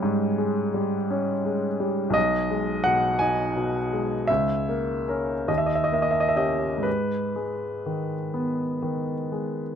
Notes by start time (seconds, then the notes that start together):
Already playing: G3 G#3 C#4 C#5
0.03 G#2
0.38 G#3
0.74 G3
1.11 C#4
1.45 G#3
1.80 G3
2.10 B1 D#5
2.50 G#3
2.84 B2 F#5
3.19 D#4 G#5
3.56 B2
3.93 G#3
4.27 C#2 E5
4.69 A#3
5.08 C#4 A#4
5.48 D#2 D#5
5.58 E5
5.66 D#5
5.75 E5
5.84 D#5
5.92 A#3 E5
6.02 D#5
6.11 E5
6.20 D#5
6.29 E5
6.36 C#4 G4 D#5
6.78 G#2
6.83 B4
7.36 G#3
7.86 D#3
8.34 B3
8.82 D#3
9.32 G#3